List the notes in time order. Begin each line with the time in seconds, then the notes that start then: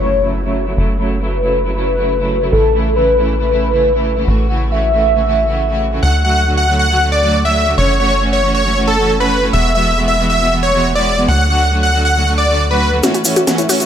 Already playing: F#1 C#5, impact
0.00 C#3 F#3 A3 E4
0.23 C#3 F#3 A3 E4
0.44 C#3 F#3 A3 E4
0.66 C#3 F#3 A3 E4
0.77 F#1 C#3 F#3 A3 E4
0.99 C#3 F#3 A3 E4
1.21 C#3 F#3 A3 E4 B4
1.43 C#3 F#3 A3 E4
1.65 C#3 F#3 A3 E4
1.76 C#3 F#3 A3 E4
1.98 C#3 F#3 A3 E4
2.20 C#3 F#3 A3 E4
2.41 C#3 F#3 A3 E4
2.52 A1 C#3 E3 A3 E4 A4
2.74 C#3 E3 A3 E4
2.96 C#3 E3 A3 E4 B4
3.18 C#3 E3 A3 E4
3.40 C#3 E3 A3 E4 B4
3.51 C#3 E3 A3 E4
3.73 C#3 E3 A3 E4
3.95 C#3 E3 A3 E4
4.16 C#3 E3 A3 E4
4.27 A1 C#3 E3 A3 F#4
4.49 C#3 E3 A3 F#4
4.71 C#3 E3 A3 F#4 E5
4.93 C#3 E3 A3 F#4
5.15 C#3 E3 A3 F#4
5.26 C#3 E3 A3 F#4
5.48 C#3 E3 A3 F#4
5.70 C#3 E3 A3 F#4
5.92 C#3 E3 A3 F#4
6.02 D2 D3 F#3 A3 F#4 F#5
6.25 D3 F#3 A3 F#4 F#5
6.47 D3 F#3 A3 F#4
6.57 F#5
6.68 D3 F#3 A3 F#4
6.79 F#5
6.90 D3 F#3 A3 F#4
7.01 D3 F#3 A3 F#4
7.12 D5
7.23 D3 F#3 A3 F#4
7.45 D3 F#3 A3 F#4 E5
7.67 D3 F#3 A3 F#4
7.78 F#1 E3 A3 C#4 F#4 C#5
8.00 E3 A3 C#4 F#4 C#5
8.22 E3 A3 C#4 F#4
8.33 C#5
8.44 E3 A3 C#4 F#4
8.55 C#5
8.65 E3 A3 C#4 F#4
8.77 E3 A3 C#4 F#4
8.87 A4
8.99 E3 A3 C#4 F#4
9.20 E3 A3 C#4 F#4 B4
9.42 E3 A3 C#4 F#4
9.53 E1 E3 G#3 B3 F#4 E5
9.75 E3 G#3 B3 F#4 E5
9.97 E3 G#3 B3 F#4
10.08 E5
10.19 E3 G#3 B3 F#4
10.30 E5
10.41 E3 G#3 B3 F#4
10.52 E3 G#3 B3 F#4
10.63 C#5
10.74 E3 G#3 B3 F#4
10.95 E3 G#3 B3 F#4 D5
11.18 E3 G#3 B3 F#4
11.28 D2 D3 F#3 A3 F#4 F#5
11.50 D3 F#3 A3 F#4 F#5
11.72 D3 F#3 A3 F#4
11.83 F#5
11.94 D3 F#3 A3 F#4
12.05 F#5
12.16 D3 F#3 A3 F#4
12.27 D3 F#3 A3 F#4
12.38 D5
12.49 D3 F#3 A3 F#4
12.71 D3 F#3 A3 F#4 B4
12.92 D3 F#3 A3 F#4
13.03 E3 A3 C#4 F#4 C#5 E5, snare, closed hi-hat, riser, cabasa
13.14 F#4, closed hi-hat, cabasa
13.25 E3 A3 C#4 E4 F#4 C#5 E5, open hi-hat, cabasa
13.36 F#4, closed hi-hat, cabasa
13.47 E3 A3 C#4 F#4, snare, closed hi-hat, cabasa
13.58 E4 C#5 E5, closed hi-hat, cabasa
13.69 E3 A3 C#4 F#4, open hi-hat, cabasa
13.80 F#4 C#5 E5, closed hi-hat, cabasa